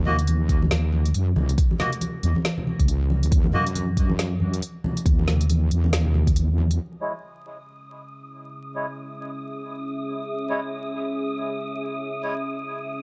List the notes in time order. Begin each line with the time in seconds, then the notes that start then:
Already playing: D#2
0.06 A#3 F#4 D#5, low conga
0.19 closed hi-hat
0.27 closed hi-hat, high conga
0.49 kick, closed hi-hat
0.62 high conga
0.71 D#2, snare, closed hi-hat
0.93 high conga
1.06 closed hi-hat
1.14 F#2, closed hi-hat
1.36 C#2, high conga, low conga
1.49 closed hi-hat
1.58 kick, closed hi-hat
1.71 high conga
1.80 A#3 F#4 D#5, snare, low conga
1.93 closed hi-hat
2.01 closed hi-hat, high conga
2.23 E2, closed hi-hat
2.36 high conga
2.45 snare, closed hi-hat
2.58 low conga
2.67 high conga
2.79 C#2, kick, closed hi-hat
2.88 closed hi-hat
3.10 high conga
3.23 D#2, closed hi-hat
3.32 D#2, kick, closed hi-hat
3.44 high conga
3.53 F#2 A#3 F#4 D#5, low conga
3.66 closed hi-hat
3.75 closed hi-hat, high conga
3.97 kick, closed hi-hat
4.10 high conga
4.19 snare, closed hi-hat
4.40 high conga
4.54 closed hi-hat
4.62 closed hi-hat
4.84 high conga, low conga
4.97 closed hi-hat
5.06 D#2, kick, closed hi-hat
5.19 high conga
5.27 snare, low conga
5.41 closed hi-hat
5.50 closed hi-hat, high conga
5.71 E2, closed hi-hat
5.84 high conga
5.93 D#2, snare, closed hi-hat
6.05 low conga
6.14 high conga
6.27 kick, closed hi-hat
6.36 closed hi-hat
6.49 E2
6.58 high conga
6.71 closed hi-hat
6.79 C#4 G#4 E5 D#6
7.01 G#3 E4 C#5
8.75 G#3 E4 C#5
10.49 G#3 E4 C#5
12.23 G#3 E4 C#5